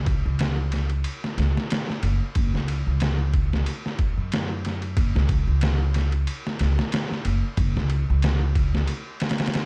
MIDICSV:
0, 0, Header, 1, 3, 480
1, 0, Start_track
1, 0, Tempo, 652174
1, 1735, Time_signature, 4, 2, 24, 8
1, 7105, End_track
2, 0, Start_track
2, 0, Title_t, "Upright bass"
2, 0, Program_c, 0, 32
2, 0, Note_on_c, 0, 37, 92
2, 152, Note_off_c, 0, 37, 0
2, 189, Note_on_c, 0, 37, 92
2, 755, Note_off_c, 0, 37, 0
2, 1013, Note_on_c, 0, 37, 92
2, 1130, Note_off_c, 0, 37, 0
2, 1495, Note_on_c, 0, 30, 94
2, 1611, Note_off_c, 0, 30, 0
2, 1738, Note_on_c, 0, 30, 96
2, 1852, Note_off_c, 0, 30, 0
2, 1869, Note_on_c, 0, 37, 92
2, 2076, Note_off_c, 0, 37, 0
2, 2111, Note_on_c, 0, 37, 86
2, 2676, Note_off_c, 0, 37, 0
2, 3072, Note_on_c, 0, 42, 76
2, 3637, Note_off_c, 0, 42, 0
2, 3658, Note_on_c, 0, 30, 97
2, 3772, Note_off_c, 0, 30, 0
2, 3794, Note_on_c, 0, 37, 95
2, 3999, Note_off_c, 0, 37, 0
2, 4028, Note_on_c, 0, 37, 96
2, 4595, Note_off_c, 0, 37, 0
2, 4862, Note_on_c, 0, 37, 92
2, 4974, Note_off_c, 0, 37, 0
2, 5338, Note_on_c, 0, 30, 92
2, 5452, Note_off_c, 0, 30, 0
2, 5575, Note_on_c, 0, 30, 93
2, 5691, Note_off_c, 0, 30, 0
2, 5717, Note_on_c, 0, 37, 93
2, 5920, Note_off_c, 0, 37, 0
2, 5961, Note_on_c, 0, 37, 98
2, 6521, Note_off_c, 0, 37, 0
2, 7105, End_track
3, 0, Start_track
3, 0, Title_t, "Drums"
3, 47, Note_on_c, 9, 51, 62
3, 50, Note_on_c, 9, 36, 85
3, 121, Note_off_c, 9, 51, 0
3, 124, Note_off_c, 9, 36, 0
3, 287, Note_on_c, 9, 51, 78
3, 299, Note_on_c, 9, 38, 101
3, 361, Note_off_c, 9, 51, 0
3, 373, Note_off_c, 9, 38, 0
3, 529, Note_on_c, 9, 51, 59
3, 541, Note_on_c, 9, 38, 33
3, 602, Note_off_c, 9, 51, 0
3, 614, Note_off_c, 9, 38, 0
3, 659, Note_on_c, 9, 51, 41
3, 733, Note_off_c, 9, 51, 0
3, 767, Note_on_c, 9, 51, 84
3, 841, Note_off_c, 9, 51, 0
3, 913, Note_on_c, 9, 38, 48
3, 987, Note_off_c, 9, 38, 0
3, 1016, Note_on_c, 9, 51, 62
3, 1028, Note_on_c, 9, 38, 52
3, 1090, Note_off_c, 9, 51, 0
3, 1101, Note_off_c, 9, 38, 0
3, 1158, Note_on_c, 9, 38, 59
3, 1232, Note_off_c, 9, 38, 0
3, 1254, Note_on_c, 9, 51, 89
3, 1266, Note_on_c, 9, 38, 111
3, 1328, Note_off_c, 9, 51, 0
3, 1340, Note_off_c, 9, 38, 0
3, 1394, Note_on_c, 9, 38, 42
3, 1468, Note_off_c, 9, 38, 0
3, 1492, Note_on_c, 9, 51, 70
3, 1565, Note_off_c, 9, 51, 0
3, 1731, Note_on_c, 9, 51, 83
3, 1734, Note_on_c, 9, 36, 106
3, 1804, Note_off_c, 9, 51, 0
3, 1808, Note_off_c, 9, 36, 0
3, 1877, Note_on_c, 9, 38, 38
3, 1951, Note_off_c, 9, 38, 0
3, 1974, Note_on_c, 9, 51, 67
3, 2047, Note_off_c, 9, 51, 0
3, 2210, Note_on_c, 9, 51, 79
3, 2222, Note_on_c, 9, 38, 101
3, 2283, Note_off_c, 9, 51, 0
3, 2295, Note_off_c, 9, 38, 0
3, 2455, Note_on_c, 9, 36, 78
3, 2455, Note_on_c, 9, 51, 62
3, 2528, Note_off_c, 9, 51, 0
3, 2529, Note_off_c, 9, 36, 0
3, 2601, Note_on_c, 9, 38, 55
3, 2674, Note_off_c, 9, 38, 0
3, 2696, Note_on_c, 9, 51, 81
3, 2770, Note_off_c, 9, 51, 0
3, 2840, Note_on_c, 9, 38, 39
3, 2914, Note_off_c, 9, 38, 0
3, 2934, Note_on_c, 9, 51, 59
3, 2936, Note_on_c, 9, 36, 84
3, 3008, Note_off_c, 9, 51, 0
3, 3010, Note_off_c, 9, 36, 0
3, 3179, Note_on_c, 9, 51, 77
3, 3191, Note_on_c, 9, 38, 106
3, 3253, Note_off_c, 9, 51, 0
3, 3265, Note_off_c, 9, 38, 0
3, 3421, Note_on_c, 9, 51, 62
3, 3432, Note_on_c, 9, 38, 35
3, 3494, Note_off_c, 9, 51, 0
3, 3506, Note_off_c, 9, 38, 0
3, 3547, Note_on_c, 9, 51, 37
3, 3621, Note_off_c, 9, 51, 0
3, 3656, Note_on_c, 9, 36, 101
3, 3656, Note_on_c, 9, 51, 82
3, 3729, Note_off_c, 9, 51, 0
3, 3730, Note_off_c, 9, 36, 0
3, 3800, Note_on_c, 9, 38, 51
3, 3873, Note_off_c, 9, 38, 0
3, 3892, Note_on_c, 9, 51, 68
3, 3895, Note_on_c, 9, 36, 95
3, 3966, Note_off_c, 9, 51, 0
3, 3968, Note_off_c, 9, 36, 0
3, 4131, Note_on_c, 9, 51, 81
3, 4143, Note_on_c, 9, 38, 103
3, 4205, Note_off_c, 9, 51, 0
3, 4216, Note_off_c, 9, 38, 0
3, 4374, Note_on_c, 9, 51, 61
3, 4386, Note_on_c, 9, 38, 34
3, 4448, Note_off_c, 9, 51, 0
3, 4460, Note_off_c, 9, 38, 0
3, 4507, Note_on_c, 9, 51, 42
3, 4580, Note_off_c, 9, 51, 0
3, 4616, Note_on_c, 9, 51, 82
3, 4690, Note_off_c, 9, 51, 0
3, 4760, Note_on_c, 9, 38, 46
3, 4833, Note_off_c, 9, 38, 0
3, 4853, Note_on_c, 9, 51, 65
3, 4865, Note_on_c, 9, 38, 52
3, 4926, Note_off_c, 9, 51, 0
3, 4938, Note_off_c, 9, 38, 0
3, 4996, Note_on_c, 9, 38, 57
3, 5070, Note_off_c, 9, 38, 0
3, 5095, Note_on_c, 9, 51, 86
3, 5106, Note_on_c, 9, 38, 106
3, 5168, Note_off_c, 9, 51, 0
3, 5180, Note_off_c, 9, 38, 0
3, 5235, Note_on_c, 9, 38, 42
3, 5309, Note_off_c, 9, 38, 0
3, 5335, Note_on_c, 9, 51, 68
3, 5408, Note_off_c, 9, 51, 0
3, 5574, Note_on_c, 9, 51, 85
3, 5576, Note_on_c, 9, 36, 109
3, 5647, Note_off_c, 9, 51, 0
3, 5649, Note_off_c, 9, 36, 0
3, 5717, Note_on_c, 9, 38, 42
3, 5791, Note_off_c, 9, 38, 0
3, 5812, Note_on_c, 9, 51, 61
3, 5885, Note_off_c, 9, 51, 0
3, 6053, Note_on_c, 9, 51, 80
3, 6065, Note_on_c, 9, 38, 108
3, 6127, Note_off_c, 9, 51, 0
3, 6138, Note_off_c, 9, 38, 0
3, 6296, Note_on_c, 9, 36, 86
3, 6296, Note_on_c, 9, 51, 64
3, 6369, Note_off_c, 9, 36, 0
3, 6370, Note_off_c, 9, 51, 0
3, 6438, Note_on_c, 9, 38, 58
3, 6511, Note_off_c, 9, 38, 0
3, 6532, Note_on_c, 9, 51, 82
3, 6605, Note_off_c, 9, 51, 0
3, 6772, Note_on_c, 9, 51, 65
3, 6783, Note_on_c, 9, 38, 85
3, 6839, Note_off_c, 9, 51, 0
3, 6839, Note_on_c, 9, 51, 64
3, 6851, Note_off_c, 9, 38, 0
3, 6851, Note_on_c, 9, 38, 88
3, 6906, Note_off_c, 9, 51, 0
3, 6906, Note_on_c, 9, 51, 68
3, 6917, Note_off_c, 9, 38, 0
3, 6917, Note_on_c, 9, 38, 89
3, 6962, Note_off_c, 9, 51, 0
3, 6962, Note_on_c, 9, 51, 64
3, 6974, Note_off_c, 9, 38, 0
3, 6974, Note_on_c, 9, 38, 85
3, 7018, Note_off_c, 9, 51, 0
3, 7018, Note_on_c, 9, 51, 83
3, 7030, Note_off_c, 9, 38, 0
3, 7030, Note_on_c, 9, 38, 98
3, 7092, Note_off_c, 9, 51, 0
3, 7104, Note_off_c, 9, 38, 0
3, 7105, End_track
0, 0, End_of_file